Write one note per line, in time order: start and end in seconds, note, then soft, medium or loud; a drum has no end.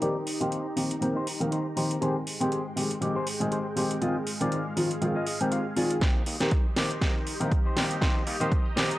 0.00 0.12 D#3 medium
0.00 0.12 A#3 medium
0.00 0.13 C4 medium
0.00 1.98 D#4 medium
0.00 0.16 D#4 loud
0.00 1.98 G4 medium
0.00 0.16 G4 medium
0.00 0.13 G4 medium
0.00 0.16 D5 loud
0.00 2.00 A#5 medium
0.00 closed hi-hat soft
0.26 muted clean electric guitar stroke soft
0.26 open hi-hat medium
0.40 0.55 D#3 medium
0.40 0.55 A#3 medium
0.40 0.55 C4 medium
0.40 0.66 D#4 medium
0.40 0.55 G4 medium
0.40 0.66 G4 medium
0.40 0.66 C5 medium
0.40 closed hi-hat medium
0.52 closed hi-hat soft
0.76 0.87 D#3 medium
0.76 0.87 A#3 medium
0.76 0.87 C4 medium
0.76 0.88 G4 medium
0.76 open hi-hat medium
0.91 muted clean electric guitar stroke soft
0.91 closed hi-hat medium
1.01 1.12 D#3 medium
1.01 1.12 A#3 medium
1.01 1.12 C4 medium
1.01 1.13 G4 loud
1.01 closed hi-hat soft
1.16 1.27 D#4 loud
1.16 1.27 G4 loud
1.16 1.27 C5 loud
1.27 open hi-hat medium
1.40 1.55 D#3 medium
1.40 1.55 A#3 medium
1.40 1.55 C4 medium
1.40 1.55 A#4 loud
1.40 muted clean electric guitar stroke soft
1.40 closed hi-hat medium
1.51 1.66 D#4 medium
1.51 1.66 G4 medium
1.51 1.66 C5 medium
1.51 closed hi-hat medium
1.76 1.93 D#3 medium
1.76 1.93 A#3 medium
1.76 1.93 C4 medium
1.76 1.91 D#4 medium
1.76 1.91 G4 medium
1.76 1.94 G4 medium
1.76 1.91 C5 medium
1.76 open hi-hat medium
1.91 closed hi-hat medium
2.01 2.12 D#3 medium
2.01 5.97 G#3 medium
2.01 2.12 G#3 medium
2.01 2.13 C4 medium
2.01 2.16 G4 loud
2.01 2.13 G4 medium
2.01 2.16 G#4 medium
2.01 2.16 C5 loud
2.01 4.00 G5 medium
2.01 4.00 C6 medium
2.01 closed hi-hat medium
2.26 muted clean electric guitar stroke soft
2.26 open hi-hat medium
2.40 2.55 D#3 medium
2.40 2.55 G#3 medium
2.40 2.55 C4 medium
2.40 2.66 G4 medium
2.40 2.55 G4 medium
2.40 2.66 G#4 medium
2.40 2.66 C5 medium
2.40 closed hi-hat medium
2.52 closed hi-hat soft
2.76 2.87 D#3 medium
2.76 2.87 G#3 medium
2.76 2.87 C4 medium
2.76 2.88 G4 medium
2.76 open hi-hat medium
2.91 muted clean electric guitar stroke soft
2.91 closed hi-hat medium
3.01 3.12 D#3 medium
3.01 3.12 G#3 medium
3.01 3.12 C4 medium
3.01 3.13 G4 loud
3.01 closed hi-hat soft
3.15 3.26 G4 loud
3.15 3.27 G#4 loud
3.15 3.27 C5 loud
3.27 open hi-hat medium
3.40 3.54 D#3 medium
3.40 3.54 G#3 medium
3.40 3.55 C4 medium
3.40 3.55 G#4 loud
3.40 muted clean electric guitar stroke soft
3.40 closed hi-hat medium
3.51 3.66 G4 medium
3.51 3.66 G#4 medium
3.51 3.66 C5 medium
3.51 closed hi-hat soft
3.76 3.93 D#3 medium
3.76 3.93 G#3 medium
3.76 3.93 C4 medium
3.76 3.93 G4 medium
3.76 3.91 G4 medium
3.76 3.91 G#4 medium
3.76 3.91 C5 medium
3.76 open hi-hat medium
3.91 closed hi-hat medium
4.01 4.12 D#3 medium
4.01 4.12 G#3 medium
4.01 4.12 C4 medium
4.01 4.16 F4 loud
4.01 4.13 F4 medium
4.01 4.16 G#4 loud
4.01 4.16 D#5 loud
4.01 6.00 F5 medium
4.01 closed hi-hat soft
4.27 muted clean electric guitar stroke soft
4.27 open hi-hat medium
4.40 4.55 D#3 medium
4.40 4.55 G#3 medium
4.40 4.55 C4 medium
4.40 4.66 F4 medium
4.40 4.55 F4 loud
4.40 4.66 G#4 medium
4.40 4.66 D5 medium
4.40 closed hi-hat medium
4.52 closed hi-hat soft
4.76 4.87 D#3 medium
4.76 4.87 G#3 medium
4.76 4.88 C4 medium
4.76 4.88 F4 medium
4.76 open hi-hat medium
4.91 muted clean electric guitar stroke soft
4.91 closed hi-hat medium
5.01 5.12 D#3 medium
5.01 5.12 G#3 medium
5.01 5.13 C4 medium
5.01 5.13 F4 loud
5.01 closed hi-hat soft
5.15 5.27 F4 loud
5.15 5.27 G#4 medium
5.15 5.26 D#5 loud
5.27 5.40 D#5 medium
5.27 open hi-hat loud
5.40 5.55 D#3 medium
5.40 5.55 G#3 medium
5.40 5.55 C4 medium
5.40 5.55 G4 loud
5.40 muted clean electric guitar stroke soft
5.40 closed hi-hat medium
5.51 5.66 F4 medium
5.51 5.66 G#4 medium
5.51 5.66 F5 medium
5.51 closed hi-hat medium
5.76 5.93 D#3 medium
5.76 5.93 G#3 medium
5.76 5.93 C4 medium
5.76 5.91 F4 medium
5.76 5.93 F4 medium
5.76 5.91 G#4 medium
5.76 5.91 D5 medium
5.76 6.00 G#5 medium
5.76 open hi-hat medium
5.90 closed hi-hat medium
6.01 6.10 D#2 loud
6.01 6.12 D#3 medium
6.01 6.12 A#3 medium
6.01 6.12 C4 medium
6.01 6.21 D#4 loud
6.01 6.13 G4 medium
6.01 6.21 G4 medium
6.01 8.98 G4 medium
6.01 6.22 C5 loud
6.01 8.98 D#5 medium
6.01 8.00 C6 medium
6.01 kick loud
6.01 snare soft
6.01 closed hi-hat soft
6.16 6.22 D#2 medium
6.26 6.35 D#2 medium
6.26 open hi-hat loud
6.40 6.55 D#3 medium
6.40 6.55 A#3 medium
6.40 6.55 C4 medium
6.40 6.66 D#4 medium
6.40 6.66 G4 medium
6.40 6.55 G4 loud
6.40 6.66 C5 medium
6.40 snare soft
6.40 closed hi-hat medium
6.51 kick loud
6.51 closed hi-hat medium
6.66 tambourine soft
6.76 6.85 D#2 loud
6.76 6.87 D#3 medium
6.76 6.87 A#3 medium
6.76 6.88 C4 medium
6.76 6.88 G4 medium
6.76 snare medium
6.76 open hi-hat medium
6.90 muted clean electric guitar stroke soft
6.90 closed hi-hat medium
6.90 tambourine medium
7.01 7.10 C2 medium
7.01 7.12 D#3 medium
7.01 7.12 A#3 medium
7.01 7.12 C4 medium
7.01 7.34 D#4 medium
7.01 7.34 G4 medium
7.01 7.13 G4 loud
7.01 7.34 A#4 medium
7.01 kick loud
7.01 snare medium
7.01 closed hi-hat medium
7.27 open hi-hat loud
7.40 7.47 C2 medium
7.40 7.55 D#3 loud
7.40 7.55 A#3 medium
7.40 7.55 C4 medium
7.40 7.55 A#4 loud
7.40 closed hi-hat medium
7.40 tambourine medium
7.52 kick loud
7.52 closed hi-hat medium
7.65 7.84 D#4 medium
7.65 7.84 G4 medium
7.65 7.84 C5 medium
7.65 tambourine soft
7.76 7.85 A#1 medium
7.76 7.93 D#3 medium
7.76 7.93 A#3 medium
7.76 7.93 C4 medium
7.76 7.93 G4 medium
7.76 snare medium
7.76 open hi-hat medium
7.90 closed hi-hat medium
7.90 tambourine medium
8.01 8.10 D#2 loud
8.01 8.12 D#3 medium
8.01 8.12 A#3 medium
8.01 8.12 C4 medium
8.01 8.21 D#4 loud
8.01 8.21 G4 loud
8.01 8.13 G4 loud
8.01 8.21 C5 loud
8.01 8.98 A#5 medium
8.01 kick loud
8.01 snare medium
8.01 closed hi-hat soft
8.16 8.23 D#2 medium
8.16 tambourine soft
8.27 8.35 D#2 loud
8.27 open hi-hat loud
8.40 8.54 D#3 medium
8.40 8.55 A#3 medium
8.40 8.55 C4 medium
8.40 8.65 D#4 medium
8.40 8.66 G4 medium
8.40 8.55 G4 loud
8.40 8.66 C5 medium
8.40 closed hi-hat medium
8.40 tambourine medium
8.52 kick loud
8.52 closed hi-hat soft
8.65 tambourine soft
8.76 8.85 D#2 loud
8.76 8.87 D#3 medium
8.76 8.87 A#3 medium
8.76 8.87 C4 medium
8.76 8.87 G4 medium
8.76 snare medium
8.76 open hi-hat loud
8.90 muted clean electric guitar stroke soft
8.90 closed hi-hat medium
8.90 tambourine medium